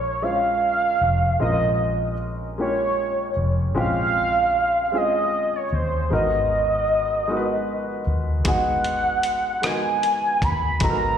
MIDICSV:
0, 0, Header, 1, 5, 480
1, 0, Start_track
1, 0, Tempo, 784314
1, 856, Time_signature, 6, 3, 24, 8
1, 6842, End_track
2, 0, Start_track
2, 0, Title_t, "Soft synth lead"
2, 0, Program_c, 0, 80
2, 0, Note_on_c, 0, 73, 93
2, 137, Note_on_c, 0, 77, 101
2, 146, Note_off_c, 0, 73, 0
2, 856, Note_off_c, 0, 77, 0
2, 863, Note_on_c, 0, 75, 88
2, 1315, Note_off_c, 0, 75, 0
2, 1595, Note_on_c, 0, 73, 94
2, 2101, Note_off_c, 0, 73, 0
2, 2317, Note_on_c, 0, 77, 117
2, 3041, Note_on_c, 0, 75, 96
2, 3050, Note_off_c, 0, 77, 0
2, 3400, Note_on_c, 0, 73, 82
2, 3409, Note_off_c, 0, 75, 0
2, 3514, Note_on_c, 0, 72, 82
2, 3523, Note_off_c, 0, 73, 0
2, 3745, Note_off_c, 0, 72, 0
2, 3760, Note_on_c, 0, 75, 95
2, 4923, Note_off_c, 0, 75, 0
2, 5186, Note_on_c, 0, 78, 89
2, 5911, Note_on_c, 0, 80, 94
2, 5920, Note_off_c, 0, 78, 0
2, 6388, Note_on_c, 0, 83, 96
2, 6397, Note_off_c, 0, 80, 0
2, 6622, Note_off_c, 0, 83, 0
2, 6626, Note_on_c, 0, 82, 102
2, 6842, Note_off_c, 0, 82, 0
2, 6842, End_track
3, 0, Start_track
3, 0, Title_t, "Grand piano"
3, 0, Program_c, 1, 0
3, 0, Control_c, 1, 64, 127
3, 0, Note_on_c, 1, 56, 59
3, 0, Note_on_c, 1, 58, 58
3, 0, Note_on_c, 1, 61, 57
3, 0, Note_on_c, 1, 65, 55
3, 0, Note_on_c, 1, 70, 68
3, 0, Note_on_c, 1, 75, 50
3, 135, Note_off_c, 1, 56, 0
3, 135, Note_on_c, 1, 56, 50
3, 138, Note_on_c, 1, 72, 45
3, 144, Note_off_c, 1, 61, 0
3, 144, Note_on_c, 1, 61, 43
3, 149, Note_off_c, 1, 65, 0
3, 149, Note_on_c, 1, 65, 44
3, 152, Note_on_c, 1, 73, 55
3, 575, Note_off_c, 1, 56, 0
3, 576, Note_off_c, 1, 72, 0
3, 579, Note_off_c, 1, 61, 0
3, 581, Note_off_c, 1, 65, 0
3, 583, Note_off_c, 1, 73, 0
3, 855, Note_on_c, 1, 56, 63
3, 857, Note_on_c, 1, 60, 58
3, 863, Note_on_c, 1, 61, 53
3, 867, Note_on_c, 1, 65, 56
3, 872, Note_off_c, 1, 70, 0
3, 872, Note_on_c, 1, 70, 69
3, 1295, Note_off_c, 1, 56, 0
3, 1296, Note_off_c, 1, 60, 0
3, 1299, Note_off_c, 1, 61, 0
3, 1301, Note_off_c, 1, 65, 0
3, 1303, Note_off_c, 1, 70, 0
3, 1579, Note_on_c, 1, 56, 51
3, 1584, Note_off_c, 1, 58, 0
3, 1584, Note_on_c, 1, 58, 44
3, 1585, Note_on_c, 1, 61, 47
3, 1593, Note_on_c, 1, 65, 50
3, 1595, Note_on_c, 1, 67, 54
3, 2016, Note_off_c, 1, 56, 0
3, 2019, Note_off_c, 1, 58, 0
3, 2020, Note_off_c, 1, 61, 0
3, 2023, Note_off_c, 1, 65, 0
3, 2024, Note_off_c, 1, 67, 0
3, 2292, Note_on_c, 1, 56, 67
3, 2296, Note_on_c, 1, 60, 57
3, 2297, Note_on_c, 1, 61, 60
3, 2304, Note_on_c, 1, 65, 58
3, 2309, Note_on_c, 1, 67, 70
3, 2733, Note_off_c, 1, 56, 0
3, 2735, Note_off_c, 1, 60, 0
3, 2736, Note_off_c, 1, 61, 0
3, 2739, Note_off_c, 1, 65, 0
3, 2742, Note_off_c, 1, 67, 0
3, 3010, Note_on_c, 1, 56, 51
3, 3013, Note_on_c, 1, 60, 49
3, 3019, Note_on_c, 1, 61, 47
3, 3023, Note_on_c, 1, 65, 46
3, 3029, Note_on_c, 1, 68, 57
3, 3452, Note_off_c, 1, 56, 0
3, 3453, Note_off_c, 1, 60, 0
3, 3456, Note_off_c, 1, 61, 0
3, 3459, Note_off_c, 1, 65, 0
3, 3461, Note_off_c, 1, 68, 0
3, 3735, Note_on_c, 1, 56, 60
3, 3736, Note_on_c, 1, 59, 56
3, 3742, Note_on_c, 1, 63, 55
3, 3745, Control_c, 1, 64, 0
3, 3748, Note_on_c, 1, 66, 60
3, 3750, Note_on_c, 1, 70, 74
3, 3751, Note_off_c, 1, 75, 0
3, 3832, Control_c, 1, 64, 127
3, 4174, Note_off_c, 1, 56, 0
3, 4175, Note_off_c, 1, 59, 0
3, 4178, Note_off_c, 1, 63, 0
3, 4181, Note_off_c, 1, 66, 0
3, 4182, Note_off_c, 1, 70, 0
3, 4452, Note_on_c, 1, 56, 61
3, 4456, Note_on_c, 1, 59, 55
3, 4459, Note_on_c, 1, 63, 55
3, 4469, Note_on_c, 1, 66, 56
3, 4470, Note_on_c, 1, 70, 51
3, 4503, Note_off_c, 1, 70, 0
3, 4509, Note_on_c, 1, 71, 68
3, 4893, Note_off_c, 1, 56, 0
3, 4895, Note_off_c, 1, 59, 0
3, 4897, Note_off_c, 1, 63, 0
3, 4901, Note_off_c, 1, 66, 0
3, 4922, Note_off_c, 1, 71, 0
3, 5167, Note_on_c, 1, 56, 65
3, 5173, Note_on_c, 1, 59, 60
3, 5181, Note_on_c, 1, 63, 56
3, 5184, Note_on_c, 1, 66, 56
3, 5187, Note_on_c, 1, 68, 67
3, 5611, Note_off_c, 1, 56, 0
3, 5614, Note_off_c, 1, 59, 0
3, 5618, Note_off_c, 1, 63, 0
3, 5619, Note_off_c, 1, 66, 0
3, 5620, Note_off_c, 1, 68, 0
3, 5886, Note_on_c, 1, 56, 52
3, 5892, Note_on_c, 1, 59, 49
3, 5899, Note_on_c, 1, 63, 47
3, 5900, Note_on_c, 1, 66, 44
3, 5906, Note_on_c, 1, 70, 52
3, 6330, Note_off_c, 1, 56, 0
3, 6333, Note_off_c, 1, 59, 0
3, 6336, Note_off_c, 1, 63, 0
3, 6337, Note_off_c, 1, 66, 0
3, 6340, Note_off_c, 1, 70, 0
3, 6616, Note_on_c, 1, 56, 64
3, 6618, Note_on_c, 1, 59, 60
3, 6621, Note_on_c, 1, 63, 58
3, 6629, Note_on_c, 1, 66, 58
3, 6632, Note_on_c, 1, 69, 56
3, 6663, Note_off_c, 1, 69, 0
3, 6670, Note_on_c, 1, 70, 71
3, 6842, Note_off_c, 1, 56, 0
3, 6842, Note_off_c, 1, 59, 0
3, 6842, Note_off_c, 1, 63, 0
3, 6842, Note_off_c, 1, 66, 0
3, 6842, Note_off_c, 1, 70, 0
3, 6842, End_track
4, 0, Start_track
4, 0, Title_t, "Fingered electric bass"
4, 0, Program_c, 2, 33
4, 0, Note_on_c, 2, 34, 77
4, 592, Note_off_c, 2, 34, 0
4, 620, Note_on_c, 2, 29, 67
4, 834, Note_off_c, 2, 29, 0
4, 864, Note_on_c, 2, 34, 77
4, 2035, Note_off_c, 2, 34, 0
4, 2060, Note_on_c, 2, 29, 68
4, 2303, Note_off_c, 2, 29, 0
4, 2303, Note_on_c, 2, 34, 84
4, 3475, Note_off_c, 2, 34, 0
4, 3504, Note_on_c, 2, 39, 73
4, 3716, Note_off_c, 2, 39, 0
4, 3742, Note_on_c, 2, 32, 88
4, 4914, Note_off_c, 2, 32, 0
4, 4938, Note_on_c, 2, 39, 66
4, 5175, Note_off_c, 2, 39, 0
4, 5175, Note_on_c, 2, 32, 85
4, 6351, Note_off_c, 2, 32, 0
4, 6380, Note_on_c, 2, 39, 70
4, 6594, Note_off_c, 2, 39, 0
4, 6618, Note_on_c, 2, 32, 89
4, 6842, Note_off_c, 2, 32, 0
4, 6842, End_track
5, 0, Start_track
5, 0, Title_t, "Drums"
5, 5171, Note_on_c, 9, 42, 68
5, 5173, Note_on_c, 9, 36, 97
5, 5232, Note_off_c, 9, 42, 0
5, 5235, Note_off_c, 9, 36, 0
5, 5413, Note_on_c, 9, 42, 39
5, 5474, Note_off_c, 9, 42, 0
5, 5651, Note_on_c, 9, 42, 52
5, 5712, Note_off_c, 9, 42, 0
5, 5896, Note_on_c, 9, 42, 56
5, 5900, Note_on_c, 9, 37, 84
5, 5957, Note_off_c, 9, 42, 0
5, 5961, Note_off_c, 9, 37, 0
5, 6139, Note_on_c, 9, 42, 43
5, 6201, Note_off_c, 9, 42, 0
5, 6376, Note_on_c, 9, 36, 72
5, 6380, Note_on_c, 9, 42, 42
5, 6438, Note_off_c, 9, 36, 0
5, 6441, Note_off_c, 9, 42, 0
5, 6611, Note_on_c, 9, 42, 70
5, 6615, Note_on_c, 9, 36, 92
5, 6672, Note_off_c, 9, 42, 0
5, 6676, Note_off_c, 9, 36, 0
5, 6842, End_track
0, 0, End_of_file